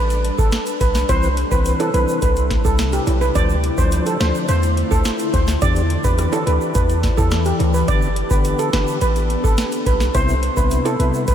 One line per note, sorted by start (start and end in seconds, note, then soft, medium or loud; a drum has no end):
0.00 0.31 A1 loud
0.00 3.31 G3 medium
0.00 3.31 D4 medium
0.00 3.31 B4 medium
0.10 closed hi-hat medium
0.10 shaker soft
0.24 closed hi-hat medium
0.38 0.50 G1 loud
0.38 0.49 A4 medium
0.38 kick loud
0.38 shaker medium
0.52 snare loud
0.52 closed hi-hat medium
0.52 shaker medium
0.66 closed hi-hat medium
0.66 shaker soft
0.80 1.04 B1 loud
0.80 0.91 B4 medium
0.80 kick medium
0.80 closed hi-hat medium
0.80 shaker soft
0.95 snare medium
0.95 shaker medium
1.09 1.44 C2 loud
1.09 3.33 C3 medium
1.09 1.29 E3 medium
1.09 1.29 C4 medium
1.09 3.33 E4 medium
1.09 1.29 B4 loud
1.09 1.19 C5 loud
1.09 kick loud
1.09 closed hi-hat medium
1.09 shaker medium
1.23 shaker medium
1.37 closed hi-hat medium
1.51 1.75 C2 loud
1.51 1.90 E3 medium
1.51 1.91 C4 medium
1.51 1.62 B4 medium
1.51 1.91 B4 medium
1.51 kick loud
1.51 shaker medium
1.65 closed hi-hat medium
1.65 shaker medium
1.80 1.90 A4 medium
1.80 closed hi-hat medium
1.80 high timbale medium
1.80 shaker medium
1.94 2.06 B1 medium
1.94 2.20 E3 medium
1.94 2.20 C4 medium
1.94 2.04 B4 medium
1.94 2.20 B4 medium
1.94 closed hi-hat medium
1.94 shaker soft
2.08 shaker medium
2.22 2.57 C2 medium
2.22 2.33 B4 medium
2.22 kick medium
2.22 closed hi-hat medium
2.22 shaker medium
2.36 closed hi-hat soft
2.36 shaker soft
2.50 kick medium
2.50 snare medium
2.50 closed hi-hat medium
2.65 3.00 C2 medium
2.65 2.75 A4 medium
2.65 kick loud
2.65 shaker medium
2.78 snare loud
2.78 closed hi-hat medium
2.78 shaker medium
2.93 3.03 G4 medium
2.93 closed hi-hat medium
2.93 shaker medium
3.07 3.30 B1 loud
3.07 closed hi-hat medium
3.07 high timbale medium
3.07 shaker medium
3.21 3.31 B4 medium
3.21 shaker medium
3.35 3.70 D2 loud
3.35 5.60 D3 medium
3.35 3.55 F3 loud
3.35 5.60 A3 medium
3.35 5.60 C4 medium
3.35 3.56 D4 medium
3.35 7.84 E4 medium
3.35 5.60 F4 medium
3.35 3.56 C5 loud
3.35 3.46 D5 loud
3.35 kick loud
3.35 closed hi-hat medium
3.35 shaker medium
3.49 shaker medium
3.64 closed hi-hat medium
3.78 4.01 D2 medium
3.78 4.17 F3 medium
3.78 4.17 D4 medium
3.78 3.88 C5 medium
3.78 4.17 C5 medium
3.78 kick loud
3.78 shaker medium
3.92 closed hi-hat medium
3.92 shaker medium
4.06 4.16 A4 medium
4.06 closed hi-hat medium
4.06 shaker medium
4.20 4.32 D2 loud
4.20 4.46 F3 medium
4.20 4.46 D4 medium
4.20 4.31 C5 medium
4.20 4.47 C5 medium
4.20 snare loud
4.20 closed hi-hat medium
4.20 shaker medium
4.35 shaker medium
4.48 4.83 E2 loud
4.48 4.59 C5 medium
4.48 closed hi-hat medium
4.48 shaker medium
4.63 closed hi-hat soft
4.63 shaker soft
4.77 closed hi-hat medium
4.91 5.03 D2 medium
4.91 5.01 A4 medium
4.91 kick medium
4.91 shaker medium
5.05 snare loud
5.05 closed hi-hat medium
5.05 shaker medium
5.19 closed hi-hat medium
5.19 shaker medium
5.33 5.57 D2 loud
5.33 5.44 C5 medium
5.33 kick medium
5.33 closed hi-hat medium
5.33 shaker soft
5.48 snare medium
5.48 shaker medium
5.62 5.97 E2 loud
5.62 5.82 E3 loud
5.62 7.86 E3 medium
5.62 5.82 D4 medium
5.62 10.11 G4 medium
5.62 5.82 G4 loud
5.62 7.86 B4 medium
5.62 5.72 D5 loud
5.62 7.86 D5 medium
5.62 kick loud
5.62 closed hi-hat medium
5.62 shaker medium
5.76 closed hi-hat medium
5.76 shaker medium
5.90 closed hi-hat medium
6.04 6.27 E2 loud
6.04 6.43 E3 medium
6.04 6.43 D4 medium
6.04 6.43 G4 medium
6.04 6.15 B4 medium
6.04 kick loud
6.04 shaker medium
6.18 cross-stick medium
6.18 closed hi-hat medium
6.18 shaker medium
6.33 6.43 A4 medium
6.33 closed hi-hat medium
6.33 high timbale medium
6.33 shaker soft
6.47 6.58 D2 medium
6.47 6.73 E3 medium
6.47 6.73 D4 medium
6.47 6.73 G4 medium
6.47 6.57 B4 medium
6.47 closed hi-hat medium
6.47 shaker medium
6.61 shaker medium
6.75 7.10 E2 loud
6.75 6.85 B4 medium
6.75 kick medium
6.75 closed hi-hat medium
6.75 shaker medium
6.89 closed hi-hat soft
6.89 shaker soft
7.03 kick medium
7.03 snare medium
7.03 closed hi-hat medium
7.03 shaker soft
7.17 7.52 E2 medium
7.17 7.28 A4 medium
7.17 kick loud
7.17 high timbale soft
7.17 shaker medium
7.31 cross-stick medium
7.31 snare loud
7.31 closed hi-hat medium
7.31 shaker medium
7.45 7.56 G4 medium
7.45 closed hi-hat medium
7.45 shaker soft
7.59 7.83 D2 loud
7.59 closed hi-hat medium
7.59 high timbale medium
7.74 7.84 B4 medium
7.74 shaker medium
7.88 8.23 G1 loud
7.88 8.08 D3 loud
7.88 10.12 B3 medium
7.88 8.08 B3 medium
7.88 11.35 D4 medium
7.88 8.08 G4 loud
7.88 7.98 D5 loud
7.88 kick loud
7.88 closed hi-hat medium
7.88 shaker medium
8.02 shaker medium
8.16 closed hi-hat medium
8.30 8.54 G1 medium
8.30 8.70 D3 medium
8.30 8.70 B3 medium
8.30 8.70 G4 medium
8.30 8.41 B4 medium
8.30 kick medium
8.30 shaker medium
8.45 closed hi-hat medium
8.45 shaker medium
8.59 8.69 A4 medium
8.59 closed hi-hat medium
8.59 shaker medium
8.73 8.85 G1 loud
8.73 8.99 D3 medium
8.73 8.99 B3 medium
8.73 8.99 G4 medium
8.73 8.83 B4 medium
8.73 snare loud
8.73 closed hi-hat medium
8.73 shaker medium
8.88 shaker medium
9.01 9.36 A1 loud
9.01 9.12 B4 medium
9.01 closed hi-hat medium
9.01 shaker medium
9.16 closed hi-hat soft
9.16 shaker soft
9.30 closed hi-hat medium
9.44 9.56 G1 loud
9.44 9.54 A4 medium
9.44 kick loud
9.44 shaker medium
9.58 snare loud
9.58 closed hi-hat medium
9.58 shaker medium
9.72 closed hi-hat medium
9.72 shaker medium
9.86 10.10 B1 loud
9.86 9.97 B4 medium
9.86 kick medium
9.86 closed hi-hat medium
9.86 shaker soft
10.00 snare medium
10.00 shaker medium
10.14 10.49 C2 loud
10.14 10.35 C3 loud
10.14 11.35 C3 medium
10.14 11.35 G3 medium
10.14 10.35 B3 medium
10.14 11.35 B3 medium
10.14 10.35 E4 loud
10.14 10.25 C5 loud
10.14 11.35 E5 medium
10.14 kick loud
10.14 closed hi-hat medium
10.14 shaker medium
10.29 shaker medium
10.43 closed hi-hat medium
10.57 10.80 C2 loud
10.57 10.96 C3 medium
10.57 10.96 B3 medium
10.57 10.96 E4 medium
10.57 10.67 B4 medium
10.57 kick medium
10.57 shaker medium
10.71 closed hi-hat medium
10.71 shaker medium
10.85 10.96 A4 medium
10.85 closed hi-hat medium
10.85 high timbale medium
10.85 shaker medium
10.99 11.11 B1 medium
10.99 11.26 C3 medium
10.99 11.26 B3 medium
10.99 11.26 E4 medium
10.99 11.10 B4 medium
10.99 closed hi-hat medium
10.99 shaker medium
11.14 shaker medium
11.28 11.35 C2 medium
11.28 11.35 B4 medium
11.28 kick medium
11.28 closed hi-hat medium
11.28 shaker medium